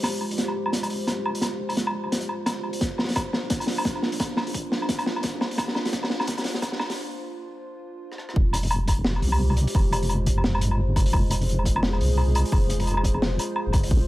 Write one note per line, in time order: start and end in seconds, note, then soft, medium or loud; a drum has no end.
0.00 0.92 F1 medium
0.00 2.81 G#3 medium
0.00 8.36 F4 medium
0.00 4.14 G4 medium
0.00 8.36 C5 medium
0.00 snare medium
0.00 closed hi-hat medium
0.00 open hi-hat soft
0.00 low woodblock medium
0.08 open hi-hat soft
0.21 low woodblock soft
0.31 open hi-hat medium
0.38 snare medium
0.38 closed hi-hat medium
0.48 low woodblock soft
0.66 low woodblock medium
0.73 snare medium
0.73 closed hi-hat medium
0.83 closed hi-hat medium
0.83 low woodblock medium
0.90 1.34 C2 loud
0.90 open hi-hat medium
1.07 snare medium
1.07 closed hi-hat medium
1.07 low woodblock soft
1.26 low woodblock medium
1.35 open hi-hat medium
1.41 2.28 F1 loud
1.41 snare medium
1.41 closed hi-hat medium
1.41 low woodblock soft
1.69 open hi-hat medium
1.69 low woodblock medium
1.77 snare medium
1.77 closed hi-hat medium
1.87 low woodblock medium
2.04 low woodblock soft
2.05 low woodblock soft
2.09 snare medium
2.09 closed hi-hat medium
2.09 low woodblock soft
2.17 closed hi-hat soft
2.17 low woodblock soft
2.29 low woodblock medium
2.46 snare medium
2.46 closed hi-hat medium
2.46 low woodblock medium
2.56 2.65 F1 medium
2.63 2.80 G1 medium
2.63 low woodblock soft
2.73 open hi-hat medium
2.81 3.69 A#1 medium
2.81 8.82 A#3 medium
2.81 9.51 D4 medium
2.81 kick loud
2.81 snare medium
2.81 closed hi-hat medium
2.98 snare medium
2.98 low woodblock soft
3.04 snare medium
3.09 snare soft
3.09 open hi-hat medium
3.16 kick medium
3.16 snare medium
3.16 closed hi-hat medium
3.16 low woodblock medium
3.33 snare medium
3.33 low woodblock soft
3.50 kick loud
3.50 snare medium
3.50 closed hi-hat medium
3.60 closed hi-hat medium
3.60 low woodblock medium
3.67 4.11 F1 medium
3.67 snare medium
3.67 open hi-hat medium
3.78 low woodblock medium
3.85 kick medium
3.85 snare medium
3.85 closed hi-hat medium
3.95 low woodblock soft
4.03 snare medium
4.12 open hi-hat medium
4.20 5.08 A#1 medium
4.20 kick medium
4.20 snare medium
4.20 closed hi-hat medium
4.20 low woodblock medium
4.37 snare medium
4.37 low woodblock medium
4.47 open hi-hat medium
4.54 kick medium
4.54 closed hi-hat medium
4.72 snare medium
4.82 low woodblock medium
4.89 kick loud
4.89 snare medium
4.89 closed hi-hat medium
4.99 closed hi-hat soft
4.99 low woodblock medium
5.06 5.58 C2 loud
5.06 snare medium
5.16 low woodblock medium
5.23 kick medium
5.23 snare medium
5.23 closed hi-hat medium
5.41 snare medium
5.41 low woodblock medium
5.51 open hi-hat medium
5.58 6.47 A#1 loud
5.58 kick loud
5.58 snare medium
5.58 closed hi-hat medium
5.58 low woodblock medium
5.68 snare medium
5.75 snare medium
5.75 low woodblock medium
5.85 snare medium
5.85 open hi-hat medium
5.92 kick medium
5.92 snare medium
5.92 closed hi-hat medium
6.03 snare medium
6.03 low woodblock soft
6.10 snare medium
6.20 snare medium
6.20 low woodblock medium
6.27 kick loud
6.27 snare medium
6.27 closed hi-hat medium
6.37 snare medium
6.37 closed hi-hat medium
6.37 low woodblock soft
6.44 6.89 F1 loud
6.44 snare medium
6.44 open hi-hat medium
6.54 snare medium
6.62 kick loud
6.62 snare medium
6.62 closed hi-hat medium
6.62 low woodblock medium
6.72 snare medium
6.79 snare medium
6.79 low woodblock medium
6.90 snare medium
6.90 open hi-hat medium
8.12 cross-stick medium
8.18 cross-stick medium
8.29 cross-stick medium
8.36 9.24 F1 medium
8.36 13.91 G#3 medium
8.36 kick loud
8.51 14.07 F4 medium
8.51 closed hi-hat medium
8.51 low woodblock medium
8.63 11.08 G4 medium
8.63 open hi-hat medium
8.71 14.07 C5 medium
8.71 closed hi-hat medium
8.71 low woodblock medium
8.88 kick medium
8.88 closed hi-hat medium
8.88 low woodblock medium
9.04 snare loud
9.16 low woodblock soft
9.22 9.66 C2 loud
9.22 open hi-hat medium
9.32 low woodblock medium
9.50 low woodblock medium
9.57 closed hi-hat medium
9.67 open hi-hat medium
9.75 10.63 F1 medium
9.75 kick loud
9.75 low woodblock soft
9.92 closed hi-hat medium
9.92 low woodblock medium
10.03 open hi-hat medium
10.09 closed hi-hat medium
10.09 low woodblock medium
10.26 kick medium
10.26 closed hi-hat medium
10.38 low woodblock medium
10.44 snare loud
10.55 low woodblock medium
10.61 11.13 G1 loud
10.61 closed hi-hat medium
10.71 low woodblock medium
10.96 14.07 G#4 medium
10.96 kick loud
10.96 closed hi-hat medium
10.96 low woodblock medium
11.06 open hi-hat medium
11.13 12.02 F1 medium
11.13 kick loud
11.13 low woodblock medium
11.31 closed hi-hat medium
11.31 low woodblock soft
11.41 open hi-hat medium
11.49 closed hi-hat medium
11.59 low woodblock soft
11.66 kick medium
11.66 closed hi-hat medium
11.76 low woodblock medium
11.83 snare loud
11.93 low woodblock soft
12.00 12.44 C2 loud
12.00 open hi-hat medium
12.17 low woodblock medium
12.35 closed hi-hat medium
12.35 low woodblock medium
12.45 open hi-hat medium
12.52 13.38 F1 medium
12.52 kick loud
12.52 low woodblock medium
12.70 closed hi-hat medium
12.80 open hi-hat medium
12.80 low woodblock soft
12.82 low woodblock soft
12.84 low woodblock soft
12.85 closed hi-hat medium
12.85 low woodblock soft
12.88 low woodblock soft
12.91 low woodblock soft
12.94 low woodblock soft
12.97 low woodblock medium
13.04 kick medium
13.04 closed hi-hat medium
13.14 low woodblock soft
13.22 snare loud
13.39 closed hi-hat medium
13.39 low woodblock soft
13.56 low woodblock medium
13.67 13.75 F1 medium
13.73 13.90 G1 medium
13.73 kick loud
13.73 closed hi-hat medium
13.73 low woodblock medium
13.83 open hi-hat medium
13.91 14.07 A#1 loud
13.91 14.07 A#3 medium
13.91 kick loud
14.03 14.07 D4 medium